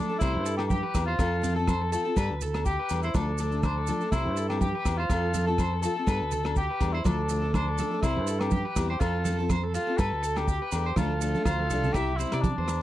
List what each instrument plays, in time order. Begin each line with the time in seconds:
Already playing: steel-string acoustic guitar F3 A3, cor anglais D4, clean electric guitar A4
0.09 steel-string acoustic guitar A3 D4 A4
0.19 fingered electric bass C2, steel-string acoustic guitar G3 C4 E4 G4, cor anglais E4, clean electric guitar C5, kick, cross-stick, muted conga, low agogo, maracas
0.35 fingered electric bass G2
0.46 clean electric guitar A4, closed hi-hat, maracas
0.57 steel-string acoustic guitar E4, cor anglais G4, muted steel-string acoustic guitar stroke, cross-stick, low agogo
0.68 cor anglais G4, clean electric guitar G4, kick, high conga, maracas
0.83 clean electric guitar B4
0.94 fingered electric bass E2, steel-string acoustic guitar C4 E4 G4, muted steel-string acoustic guitar stroke, kick, cross-stick, closed hi-hat, low agogo, maracas
1.06 cor anglais F4, clean electric guitar C5
1.19 fingered electric bass F2, steel-string acoustic guitar F3 C4 F4 A4, clean electric guitar A4, kick, cross-stick, low agogo, maracas
1.42 steel-string acoustic guitar F3 C4 F4 A4, clean electric guitar A4, closed hi-hat, muted conga, high conga, maracas
1.56 steel-string acoustic guitar C4 F4 A4, cor anglais A4
1.67 clean electric guitar C5, kick, cross-stick, high conga, low agogo, maracas
1.81 clean electric guitar A4
1.92 steel-string acoustic guitar F3 C4 F4 A4, clean electric guitar A4, cor anglais A4, closed hi-hat, muted conga, maracas
2.05 steel-string acoustic guitar C4 F4 A4
2.16 fingered electric bass G2, steel-string acoustic guitar G3 B3 D4 A4, clean electric guitar B4, kick, cross-stick, low agogo, maracas
2.30 fingered electric bass D2
2.41 clean electric guitar A4, closed hi-hat, low conga, maracas
2.54 steel-string acoustic guitar B3 D4 A4, cross-stick, low agogo, maracas
2.66 cor anglais G4, clean electric guitar G4, kick, maracas
2.79 clean electric guitar B4
2.89 fingered electric bass E2, steel-string acoustic guitar G3 B3 D4, closed hi-hat, low agogo, maracas
2.93 steel-string acoustic guitar A4
3.03 cor anglais E4, clean electric guitar C5, maracas
3.14 fingered electric bass D2, steel-string acoustic guitar F3 A3 D4 A4, cor anglais D4, clean electric guitar A4, kick, cross-stick, muted conga, high conga, low agogo, maracas
3.38 steel-string acoustic guitar F3 A3 D4 A4, clean electric guitar A4, closed hi-hat, muted conga, maracas
3.51 steel-string acoustic guitar A3 D4 A4, maracas
3.63 cor anglais D4, clean electric guitar C5, kick, cross-stick, high conga, low agogo, maracas
3.78 clean electric guitar A4
3.87 steel-string acoustic guitar F3 A3 D4 A4, clean electric guitar A4, closed hi-hat, muted conga, high conga, maracas
4.01 steel-string acoustic guitar A3 D4 A4, maracas
4.12 fingered electric bass C2, steel-string acoustic guitar C4 E4 G4, cor anglais E4, clean electric guitar C5, muted steel-string acoustic guitar stroke, kick, cross-stick, muted conga, low agogo, maracas
4.26 fingered electric bass G2
4.37 clean electric guitar A4, closed hi-hat, maracas
4.49 steel-string acoustic guitar C4 E4 G4, cor anglais G4, cross-stick, low agogo
4.61 cor anglais G4, clean electric guitar G4, kick, high conga, maracas
4.75 clean electric guitar B4
4.85 fingered electric bass E2, steel-string acoustic guitar G3 C4 E4 G4, kick, cross-stick, closed hi-hat, low agogo, maracas
4.98 cor anglais F4, clean electric guitar C5
5.10 fingered electric bass F2, steel-string acoustic guitar F3 F4 A4, clean electric guitar A4, muted steel-string acoustic guitar stroke, kick, cross-stick, low agogo, maracas
5.33 steel-string acoustic guitar F3 C4 F4 A4, clean electric guitar A4, closed hi-hat, muted conga, high conga, maracas
5.47 steel-string acoustic guitar C4 F4 A4, cor anglais A4
5.58 clean electric guitar C5, kick, cross-stick, high conga, low agogo, maracas
5.73 clean electric guitar A4
5.83 steel-string acoustic guitar F3 C4 F4 A4, cor anglais A4, clean electric guitar A4, closed hi-hat, muted conga, maracas
5.96 steel-string acoustic guitar C4 F4 A4
6.06 fingered electric bass G2, steel-string acoustic guitar G3 B3 D4 A4, clean electric guitar B4, kick, cross-stick, low agogo, maracas
6.22 fingered electric bass D2
6.31 clean electric guitar A4, closed hi-hat, low conga, maracas
6.43 steel-string acoustic guitar B3 D4 A4, cross-stick, low agogo
6.56 cor anglais G4, clean electric guitar G4, kick, maracas
6.70 clean electric guitar B4
6.80 fingered electric bass E2, steel-string acoustic guitar G3 B3 D4 A4, kick, closed hi-hat, low agogo
6.93 cor anglais E4, clean electric guitar C5
7.04 fingered electric bass D2, steel-string acoustic guitar F3 A3 A4, cor anglais D4, clean electric guitar A4, muted steel-string acoustic guitar stroke, kick, cross-stick, muted conga, high conga, low agogo, maracas
7.29 steel-string acoustic guitar F3 A3 D4 A4, clean electric guitar A4, closed hi-hat, muted conga, maracas
7.42 steel-string acoustic guitar A3 D4 A4
7.54 cor anglais D4, clean electric guitar C5, kick, cross-stick, high conga, low agogo, maracas
7.68 clean electric guitar A4
7.78 steel-string acoustic guitar F3 A3 D4 A4, clean electric guitar A4, closed hi-hat, muted conga, high conga, maracas
7.91 steel-string acoustic guitar A3 D4 A4
8.02 fingered electric bass C2, steel-string acoustic guitar G3 C4 E4 G4, cor anglais E4, clean electric guitar C5, kick, cross-stick, low agogo, maracas
8.16 fingered electric bass G2
8.27 clean electric guitar A4, closed hi-hat, maracas
8.40 steel-string acoustic guitar C4 E4, cor anglais G4, muted steel-string acoustic guitar stroke, cross-stick, low agogo
8.51 clean electric guitar G4, kick, high conga, maracas
8.65 clean electric guitar B4
8.76 fingered electric bass E2, steel-string acoustic guitar G3 C4 E4 G4, kick, cross-stick, closed hi-hat, low agogo, maracas
8.90 cor anglais G4, clean electric guitar C5
9.00 fingered electric bass F2, steel-string acoustic guitar F3 C4 F4 A4, cor anglais F4, clean electric guitar A4, kick, cross-stick, low agogo, maracas
9.24 steel-string acoustic guitar F3 C4 F4 A4, clean electric guitar A4, closed hi-hat, muted conga, high conga, maracas
9.39 steel-string acoustic guitar C4 F4 A4
9.50 clean electric guitar C5, kick, cross-stick, high conga, low agogo, maracas
9.64 clean electric guitar A4
9.74 steel-string acoustic guitar F3 C4 F4, cor anglais F4, clean electric guitar A4, muted steel-string acoustic guitar stroke, closed hi-hat, muted conga, maracas
9.87 steel-string acoustic guitar C4 F4 A4
9.98 fingered electric bass G2, steel-string acoustic guitar G3 B3 A4, cor anglais A4, clean electric guitar B4, muted steel-string acoustic guitar stroke, kick, cross-stick, low agogo, maracas
10.12 fingered electric bass D2
10.23 clean electric guitar A4, closed hi-hat, maracas
10.36 steel-string acoustic guitar B3 D4 A4, cor anglais G4, cross-stick, low agogo, maracas
10.48 clean electric guitar G4, kick, maracas
10.62 clean electric guitar B4
10.72 fingered electric bass E2, steel-string acoustic guitar G3 B3 D4 A4, cor anglais G4, closed hi-hat, low agogo, maracas
10.86 clean electric guitar C5
10.96 fingered electric bass D2, steel-string acoustic guitar F3 A3 D4 A4, cor anglais F4, clean electric guitar A4, kick, cross-stick, muted conga, high conga, low conga, low agogo, maracas
11.21 steel-string acoustic guitar F3 A3 D4 A4, clean electric guitar A4, closed hi-hat, muted conga, maracas
11.35 steel-string acoustic guitar A3 D4 A4, high conga, maracas
11.44 fingered electric bass D2, cor anglais F4, clean electric guitar C5, kick, cross-stick, high conga, low agogo, maracas
11.59 clean electric guitar A4, high conga
11.70 fingered electric bass C2, steel-string acoustic guitar F3 A3 D4 A4, clean electric guitar A4, closed hi-hat, low conga, maracas
11.84 steel-string acoustic guitar D4 A4, low conga, maracas
11.88 steel-string acoustic guitar A3
11.93 fingered electric bass C2, steel-string acoustic guitar G3 C4, cor anglais G4, clean electric guitar E5, kick, cross-stick, closed hi-hat, low agogo, maracas
11.97 steel-string acoustic guitar E4 G4
12.17 steel-string acoustic guitar G3 C4 E4, cor anglais E4, clean electric guitar C5, closed hi-hat, muted conga, maracas
12.21 steel-string acoustic guitar G4
12.32 fingered electric bass C3, steel-string acoustic guitar C4 E4 G4, clean electric guitar D5, cross-stick, closed hi-hat, low agogo, maracas
12.42 cor anglais D4, kick, closed hi-hat, high conga, maracas
12.58 fingered electric bass E2, clean electric guitar C5
12.68 cross-stick, closed hi-hat, low agogo, maracas